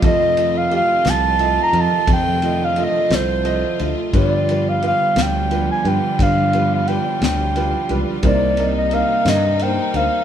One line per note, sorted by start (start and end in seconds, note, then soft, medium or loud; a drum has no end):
0.00 2.04 F1 medium
0.00 0.80 F2 medium
0.00 2.04 F2 medium
0.00 4.10 D#3 medium
0.00 4.09 F3 medium
0.00 4.09 A3 medium
0.00 0.30 A3 medium
0.00 2.05 C4 medium
0.00 8.20 F4 medium
0.00 0.30 F4 medium
0.00 0.31 D#5 medium
0.00 kick loud
0.00 ride medium
0.07 0.59 D#5 loud
0.37 0.62 A3 medium
0.37 0.63 F4 medium
0.37 0.63 D#5 medium
0.37 ride medium
0.57 0.73 F5 medium
0.70 1.21 A3 medium
0.70 1.22 F4 medium
0.70 1.22 G4 medium
0.70 ride soft
0.76 1.11 F5 loud
1.05 1.57 C2 medium
1.05 snare medium
1.05 ride medium
1.10 1.65 A5 loud
1.39 1.64 A3 medium
1.39 1.65 F4 medium
1.39 1.65 D#5 medium
1.39 ride medium
1.63 1.82 A#5 loud
1.73 1.86 F2 medium
1.73 2.24 A3 medium
1.73 2.24 F4 medium
1.73 2.24 D#5 medium
1.73 ride medium
1.81 2.11 A5 loud
2.07 4.10 F1 medium
2.07 2.86 F2 medium
2.07 4.10 F2 medium
2.07 4.11 D3 medium
2.07 kick loud
2.07 ride medium
2.13 2.66 G5 loud
2.42 2.68 A3 medium
2.42 2.68 F4 medium
2.42 2.68 D#5 medium
2.42 ride medium
2.64 2.85 F5 medium
2.76 3.28 A3 medium
2.76 3.28 F4 medium
2.76 3.28 D#5 medium
2.76 ride medium
2.84 3.16 D#5 loud
3.10 3.63 C2 medium
3.10 snare loud
3.10 ride medium
3.15 3.90 C5 medium
3.44 3.70 A3 medium
3.44 3.70 F4 medium
3.44 3.70 D#5 medium
3.44 ride medium
3.79 3.93 D2 medium
3.79 4.14 A3 medium
3.79 4.13 F4 medium
3.79 4.14 D#5 medium
3.79 ride medium
4.13 6.15 G1 medium
4.13 4.92 G2 medium
4.13 6.15 G2 medium
4.13 8.20 D3 medium
4.13 8.19 F3 medium
4.13 4.41 G3 medium
4.13 10.24 G3 medium
4.13 8.20 B3 medium
4.13 4.41 F4 medium
4.13 4.41 B4 medium
4.13 kick loud
4.13 ride medium
4.18 4.70 D5 medium
4.49 4.74 G3 medium
4.49 4.74 F4 medium
4.49 4.74 B4 medium
4.49 ride medium
4.69 4.84 F5 medium
4.82 5.33 G3 medium
4.82 5.33 F4 medium
4.82 5.33 B4 medium
4.82 ride soft
4.87 5.24 F5 loud
5.16 5.68 D2 medium
5.16 snare medium
5.16 ride medium
5.22 5.71 G5 medium
5.51 5.76 G3 medium
5.51 5.76 F4 medium
5.51 5.76 B4 medium
5.51 ride medium
5.71 5.89 G#5 medium
5.85 5.98 G2 medium
5.85 6.35 G3 medium
5.85 6.35 F4 medium
5.85 6.36 B4 medium
5.85 6.24 G5 medium
5.85 ride soft
6.19 8.20 G1 medium
6.19 6.97 G2 medium
6.19 8.20 G2 medium
6.19 6.72 F5 medium
6.19 kick medium
6.19 ride medium
6.53 6.78 G3 medium
6.53 6.79 F4 medium
6.53 6.79 B4 medium
6.53 ride medium
6.74 6.89 F5 medium
6.87 7.37 G3 medium
6.87 7.38 F4 medium
6.87 7.38 B4 medium
6.87 7.22 G5 loud
6.87 ride soft
7.21 7.73 D2 loud
7.21 7.96 G5 medium
7.21 snare medium
7.21 ride medium
7.56 7.81 G3 medium
7.56 7.81 F4 medium
7.56 7.81 B4 medium
7.56 ride medium
7.89 8.03 C#2 medium
7.89 8.23 G3 medium
7.89 8.24 F4 medium
7.89 8.24 B4 medium
7.89 ride soft
8.22 9.01 C2 loud
8.22 10.24 C2 medium
8.22 10.24 C3 medium
8.22 10.24 D#3 medium
8.22 8.51 A#3 medium
8.22 10.24 A#3 medium
8.22 10.24 D#4 medium
8.22 8.51 D#4 medium
8.22 8.51 C5 medium
8.22 kick loud
8.22 ride medium
8.27 8.73 D5 medium
8.57 8.84 A#3 medium
8.57 8.83 D#4 medium
8.57 8.84 D#5 medium
8.57 ride medium
8.78 8.95 D#5 medium
8.91 9.42 A#3 medium
8.91 9.43 D#4 medium
8.91 9.43 D#5 medium
8.91 9.31 F5 loud
8.91 ride soft
9.25 9.78 G2 medium
9.25 snare loud
9.25 ride medium
9.29 9.64 D#5 medium
9.59 9.87 A#3 medium
9.59 9.87 D#4 medium
9.59 9.87 C5 medium
9.59 9.98 G5 medium
9.59 ride medium
9.94 10.07 D2 medium
9.94 10.24 A#3 medium
9.94 10.24 D#4 medium
9.94 10.24 C5 medium
9.94 10.24 F5 loud
9.94 ride medium